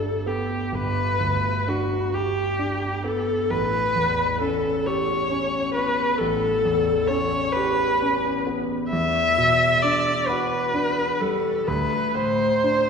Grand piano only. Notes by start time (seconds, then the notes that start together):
Already playing: G1 D2 D4 G4
0.26 B3
0.72 G1
1.21 D2
1.68 D4
2.14 G4
2.59 D4
3.04 B3
3.50 A1
3.96 E2
4.41 C#4
4.87 G4
5.31 C#4
5.76 B3
6.20 A1
6.65 E2
7.10 C#4
7.56 G4
8.02 C#4
8.47 B3
8.93 E2
9.38 B2
9.84 D4
10.29 F#4
10.74 D4
11.21 G3
11.68 D2
12.15 A2
12.64 D4